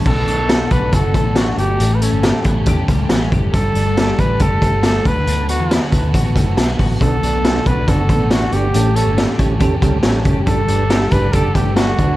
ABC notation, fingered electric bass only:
X:1
M:4/4
L:1/16
Q:1/4=138
K:Bm
V:1 name="Fingered electric bass" clef=bass
B,,,2 B,,,4 B,,,2 F,,,2 A,,,4 G,,,2 | A,,,3 G,,,2 z A,,,2 E,,2 C,,2 A,,,2 F,,,2 | G,,,2 G,,,4 A,,,2 F,,,2 G,,,4 D,,2 | D,,3 E,,2 z D,,2 A,,,2 F,,,2 B,,,2 A,,,2 |
B,,,2 B,,,4 B,,,2 F,,,2 A,,,4 G,,,2 | A,,,3 G,,,2 z A,,,2 E,,2 C,,2 A,,,2 F,,,2 | G,,,2 G,,,4 G,,,2 F,,,2 G,,,4 D,,2 |]